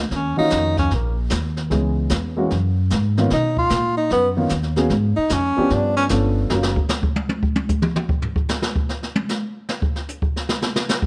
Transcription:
0.11 upright bass D#2, brush sweep, snare
0.16 tenor saxophone C#4
0.37 grand piano D#3 A#3 C#4 F4 F#4, tenor saxophone D#4, muted upright bass stroke
0.50 upright bass F2, snare, hi-hat pedal
0.77 tenor saxophone C#4, kick, snare
0.91 upright bass A#1, tenor saxophone A#3, brush sweep, snare
1.30 upright bass D#2, snare, hi-hat pedal
1.57 snare
1.70 upright bass C#2, grand piano E3 G#3 B3 C#4 G#4, brush sweep, snare
2.10 upright bass E2, snare, hi-hat pedal
2.37 grand piano E3 G#3 A#3 C#4 F#4
2.50 upright bass F#2, brush sweep, snare
2.90 upright bass G#2, snare, hi-hat pedal
3.17 grand piano D#3 A#3 B3 C#4 F4, snare
3.30 upright bass B2, tenor saxophone D#4, brush sweep, snare
3.57 tenor saxophone F4, kick
3.69 upright bass A#2, snare, hi-hat pedal
3.97 tenor saxophone D#4
4.10 upright bass F#2, tenor saxophone B3, brush sweep, snare
4.37 grand piano D#3 A#3 B3 C#4 F4
4.49 upright bass D#2, snare, hi-hat pedal
4.63 snare
4.76 grand piano F#3 A#3 B3 C#4 G#4, snare
4.90 upright bass G#2, brush sweep, snare
5.16 tenor saxophone D#4, muted upright bass stroke
5.29 upright bass F2, tenor saxophone C#4, snare, hi-hat pedal
5.57 grand piano F3 B3 C#4 D4 G4, muted upright bass stroke
5.70 upright bass G2, tenor saxophone D4, brush sweep, snare
5.96 tenor saxophone C#4, snare
6.09 upright bass G1, grand piano F3 B3 C#4 D4 A4, snare, hi-hat pedal
6.50 upright bass F#1, grand piano F#3 A#3 C#4 F4 A#4, snare
6.63 snare
6.76 kick
6.89 snare, hi-hat pedal
7.03 kick
7.16 high tom
7.29 high tom
7.43 kick
7.56 high tom
7.69 kick, hi-hat pedal
7.82 mid tom
7.96 mid tom
8.09 kick
8.22 floor tom
8.36 kick
8.49 snare, hi-hat pedal
8.62 snare
8.76 kick
8.89 snare
9.03 snare
9.15 high tom
9.29 snare, hi-hat pedal
9.69 snare
9.82 kick
9.96 snare
10.09 hi-hat pedal
10.22 kick
10.36 snare
10.49 snare
10.62 snare
10.76 snare
10.89 snare, hi-hat pedal
11.02 kick

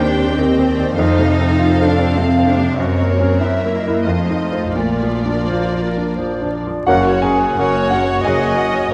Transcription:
Already playing: double bass section D#2, grand piano D#2 D#3 C4 G4 C5, viola section G4, violin section C5 G5
0.05 cello section D4, flute section C5
0.17 grand piano C4
0.35 grand piano D#3, cello section C4, flute section D#5
0.59 grand piano C4
0.66 flute section D5
0.77 grand piano D#3
0.95 double bass section F2, grand piano F2, cello section D#4, viola section A4, flute section C5, violin section F5
1.19 grand piano C3
1.26 flute section A4
1.40 grand piano C4
1.58 grand piano F4, flute section C5
1.81 grand piano A4
1.86 cello section D4
1.98 grand piano C4
2.16 grand piano C3, cello section C4, flute section F5
2.39 grand piano C4
2.47 cello section D4
2.58 grand piano C3
2.78 double bass section F#2, grand piano F#2, cello section C4, viola section F#4, violin section A#4 C#5, flute section D#5
3.02 grand piano A#3
3.09 flute section C#5
3.20 grand piano C#4 A#4
3.39 grand piano F#2, viola section E4, flute section E5, violin section E5
3.65 grand piano A#3
3.71 cello section A#3, flute section D#5
3.87 grand piano E4 A#4
4.04 double bass section F2, grand piano F2, cello section A3, viola section F4, violin section C5 D#5, flute section F5
4.30 grand piano D#4
4.40 flute section D#5
4.51 grand piano F4 C5
4.74 double bass section A#1, grand piano A#2, cello section A3, violin section A#4 D5, flute section D5
5.03 grand piano F3
5.25 grand piano D4
5.46 cello section A#3, clarinet C5
5.50 grand piano F4
5.73 grand piano D5
5.82 clarinet A#4
5.97 grand piano D4
6.16 grand piano F3, clarinet C5
6.42 grand piano D4
6.52 clarinet D5
6.67 grand piano F3
6.86 double bass section F#1, grand piano F#1 F#4 C#5 F#5, cello section F#2, bassoon A#3, french horn section A#3 C#4, violin section C#4 A#4 F#5, clarinet F#4, flute section F#5
6.90 grand piano F#2
7.06 violin section F#4 C#5
7.22 violin section C#4 A#4 F#5, grand piano G#4 G#5, flute section G#5
7.40 violin section F#4 C#5
7.56 double bass section F#1, cello section F#2, grand piano A#3 F#4 C#5, violin section C#4 A#4 F#5, viola section C#5
7.74 violin section F#4 C#5
7.90 violin section C#4 A#4 F#5, grand piano F#4 F#5, flute section F#5
8.07 violin section F#4 C#5
8.23 double bass section F#1, cello section F#2, grand piano A#3 F#4 G#4 C#5 G#5, violin section C#4 A#4 F#5, viola section D#5, flute section G#5
8.40 violin section F#4 C#5
8.55 violin section C#4 A#4 F#5
8.72 violin section F#4 C#5
8.90 violin section C#4 A#4

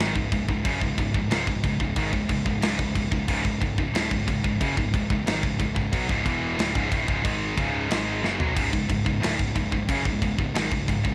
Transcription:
0.00 picked electric bass G#1, distorted electric guitar G#2 D#3, snare
0.15 picked electric bass C#1, distorted electric guitar C#2 G#2, kick
0.32 picked electric bass C#1, distorted electric guitar C#2 G#2, kick, crash
0.49 picked electric bass C#1, distorted electric guitar C#2 G#2, kick
0.65 picked electric bass F#1, distorted electric guitar F#2 C#3, kick, crash
0.82 picked electric bass C#1, distorted electric guitar C#2 G#2, kick
0.98 picked electric bass C#1, distorted electric guitar C#2 G#2, kick, crash
1.14 picked electric bass C#1, distorted electric guitar C#2 G#2, kick
1.31 picked electric bass C#1, distorted electric guitar C#2 G#2, snare, crash
1.47 picked electric bass C#1, distorted electric guitar C#2 G#2, kick
1.64 picked electric bass C#1, distorted electric guitar C#2 G#2, kick, crash
1.80 picked electric bass C#1, distorted electric guitar C#2 G#2, kick
1.96 picked electric bass G#1, distorted electric guitar G#2 D#3, kick, crash
2.13 picked electric bass C#1, distorted electric guitar C#2 G#2, kick
2.29 picked electric bass C#1, distorted electric guitar C#2 G#2, kick, crash
2.46 picked electric bass C#1, distorted electric guitar C#2 G#2, kick
2.62 picked electric bass C#1, distorted electric guitar C#2 G#2, snare, crash
2.79 picked electric bass C#1, distorted electric guitar C#2 G#2, kick
2.95 picked electric bass C#1, distorted electric guitar C#2 G#2, kick, crash
3.11 picked electric bass C#1, distorted electric guitar C#2 G#2, kick
3.28 picked electric bass C#1, distorted electric guitar C#2 G#2, kick, crash
3.44 picked electric bass C#1, distorted electric guitar C#2 G#2, kick
3.61 picked electric bass C#1, distorted electric guitar C#2 G#2, kick, crash
3.78 picked electric bass C#1, distorted electric guitar C#2 G#2, kick
3.94 picked electric bass D1, distorted electric guitar D2 A2, snare, crash
4.11 picked electric bass C#1, distorted electric guitar C#2 G#2, kick
4.27 picked electric bass C#1, distorted electric guitar C#2 G#2, kick, crash
4.43 picked electric bass C#1, distorted electric guitar C#2 G#2, kick
4.60 picked electric bass F#1, distorted electric guitar F#2 C#3, kick, crash
4.77 picked electric bass C#1, distorted electric guitar C#2 G#2, kick
4.93 picked electric bass C#1, distorted electric guitar C#2 G#2, kick, crash
5.10 picked electric bass C#1, distorted electric guitar C#2 G#2, kick
5.26 picked electric bass G#1, distorted electric guitar G#2 D#3, snare, crash
5.43 picked electric bass C#1, distorted electric guitar C#2 G#2, kick
5.58 picked electric bass C#1, distorted electric guitar C#2 G#2, kick, crash
5.75 picked electric bass C#1, distorted electric guitar C#2 G#2, kick
5.91 picked electric bass B1, distorted electric guitar B2 F#3, kick, crash
6.09 picked electric bass C#1, distorted electric guitar C#2 G#2, kick
6.25 picked electric bass E1, distorted electric guitar E2 B2 E3, kick, crash
6.58 picked electric bass D1, distorted electric guitar D2 A2, snare, crash
6.74 picked electric bass C#1, distorted electric guitar C#2 G#2, kick
6.91 picked electric bass D1, distorted electric guitar D2 A2, kick, crash
7.07 picked electric bass C#1, distorted electric guitar C#2 G#2, kick
7.23 picked electric bass G#1, distorted electric guitar G#2 D#3 G#3, kick, crash
7.57 picked electric bass C#1, distorted electric guitar C#2 G#2 C#3, kick, crash
7.90 picked electric bass G#1, distorted electric guitar G#2 D#3 G#3, snare, crash
8.22 picked electric bass F#1, distorted electric guitar F#2 C#3, snare
8.39 picked electric bass B1, distorted electric guitar B2 F#3, floor tom
8.55 picked electric bass C#1, distorted electric guitar C#2 G#2, kick, crash
8.72 picked electric bass C#1, distorted electric guitar C#2 G#2, kick
8.88 picked electric bass C#1, distorted electric guitar C#2 G#2, kick, crash
9.05 picked electric bass C#1, distorted electric guitar C#2 G#2, kick
9.20 picked electric bass D1, distorted electric guitar D2 A2, crash
9.24 snare
9.38 picked electric bass C#1, distorted electric guitar C#2 G#2, kick
9.55 picked electric bass C#1, distorted electric guitar C#2 G#2, kick, crash
9.71 picked electric bass C#1, distorted electric guitar C#2 G#2, kick
9.88 picked electric bass F#1, distorted electric guitar F#2 C#3, kick, crash
10.05 picked electric bass C#1, distorted electric guitar C#2 G#2, kick
10.22 picked electric bass C#1, distorted electric guitar C#2 G#2, kick, crash
10.38 picked electric bass C#1, distorted electric guitar C#2 G#2, kick
10.55 picked electric bass G#1, distorted electric guitar G#2 D#3, snare, crash
10.72 picked electric bass C#1, distorted electric guitar C#2 G#2, kick
10.88 picked electric bass C#1, distorted electric guitar C#2 G#2, kick, crash
11.05 picked electric bass C#1, distorted electric guitar C#2 G#2, kick

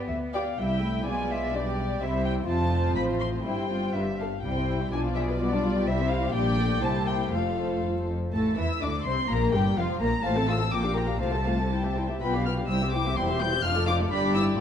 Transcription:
Already playing: cello section B3
0.08 double bass section D2, violin section E5
0.33 viola section G4 D5, violin section D5 F5 G5
0.58 cello section C2, double bass section C2, viola section G3 E4, violin section E4 E5 G5
0.82 viola section A3
1.06 double bass section B1, cello section B2, viola section G#3 B3, violin section F4 D5 G#5
1.31 violin section E5
1.54 viola section G3 D4, violin section G4 D5
1.78 viola section D4
2.01 double bass section C2, cello section C3, viola section G3 C4, violin section E4 C5 E5
2.25 violin section G5
2.47 double bass section F1, cello section F2, viola section F3 C4, violin section F4 C5 A5
2.95 double bass section A1, cello section A2, violin section B5
3.20 violin section C6
3.44 double bass section G1, cello section G2, viola section G3 C4, violin section E4 C5 G5
3.70 violin section F4
3.94 double bass section G1, cello section G2, viola section G3 D4, violin section B4 E5
4.20 violin section A4 F5
4.43 double bass section C2, cello section C3, viola section G3 E4, violin section G3 C5 G5
4.57 violin section C4
4.69 violin section E4
4.80 violin section G4
4.92 double bass section B1, cello section B2, viola section F3 F4, violin section D4 D5 G#5
5.05 violin section F4
5.16 violin section G#4 E5
5.29 violin section B4
5.40 viola section G3, violin section B3 D5
5.53 violin section D4
5.65 violin section F4
5.77 violin section G4
5.87 double bass section C2, cello section C3, violin section G3 C5 E5, viola section E4
5.99 violin section C4
6.10 violin section E4 F5
6.23 violin section G4
6.33 double bass section A#1, cello section A#2, viola section G3 D4, violin section G4 D5 G5
6.58 viola section A3
6.81 double bass section C2, cello section C3, viola section A#3 E4, violin section G4 C5 A5
7.06 violin section G5
7.31 double bass section F1, cello section F2, viola section A3 F4, violin section A4 C5 F5
7.82 cello section G2
8.08 cello section F2
8.32 double bass section A1, cello section A2, viola section A3, violin section A4 A5
8.57 double bass section E2, cello section E3, viola section E4, violin section E5 E6
8.82 double bass section D2, cello section D3, viola section D4, violin section D5 D6
9.06 double bass section C2, cello section C3, viola section C4, violin section C5 C6
9.29 double bass section A#1, cello section A#2, viola section A#3, violin section A#4 A#5
9.53 double bass section G1, cello section G2, viola section G3, violin section G4 G5
9.76 double bass section F1, cello section F2, viola section F3, violin section F4 F5
10.00 double bass section A#1, cello section A#2, viola section A#3, violin section A#4 A#5
10.23 double bass section A1, cello section A2, viola section A3 F4, violin section C5 F5 A5
10.35 viola section C4 A4, violin section A4 A5
10.47 viola section A3 F4, violin section C5 F5 E6
10.59 viola section C4 A4, violin section A4 A5
10.71 double bass section A#1, cello section A#2, viola section A#3 F4, violin section A#4 G5 D6
10.83 viola section D4 G4, violin section G4 F5
10.95 viola section A#3 F4, violin section A#4 G5 A#5
11.08 viola section D4 G4, violin section G4 F5
11.20 double bass section C2, cello section C3, viola section A3 F4, violin section C5 F5 A5
11.33 viola section C4 A4, violin section A4 A5
11.45 viola section A3 F4, violin section C5 F5
11.58 viola section C4 A4, violin section A4 A5
11.70 viola section G3 E4, violin section C5 G5
11.83 viola section C4 G4, violin section G4 E5
11.96 viola section G3 E4, violin section C5 G5
12.09 viola section C4 G4, violin section G4 E5
12.20 double bass section B1, cello section B2, viola section B3 F4, violin section B4 G5 B5
12.33 viola section D4 G4, violin section G4 F5
12.45 viola section B3 F4, violin section B4 G5 F6
12.58 viola section D4 G4, violin section G4 F5
12.69 double bass section C2, cello section C3, viola section G3 E4, violin section C5 G5 E6
12.82 viola section C4 G4, violin section G4 E5
12.93 viola section G3 E4, violin section C5 G5 D6
13.06 viola section C4 G4, violin section G4 E5
13.17 double bass section E1, cello section E2, viola section G3 E4, violin section C5 G5 C6
13.28 viola section C4 G4, violin section G4 E5
13.40 viola section G3 E4, violin section C5 G5 G6
13.53 viola section C4 G4, violin section G4 E5
13.64 double bass section F1, cello section F2, viola section F3 D4, violin section F4 F5 F6
13.75 viola section A3 F4, violin section A4 D5
13.87 viola section F3 D4, violin section F4 F5 D6
13.99 viola section A3 F4, violin section A4 D5
14.11 double bass section G1, cello section G2, viola section D4, violin section G4 D5 B5
14.35 viola section E4, violin section E6

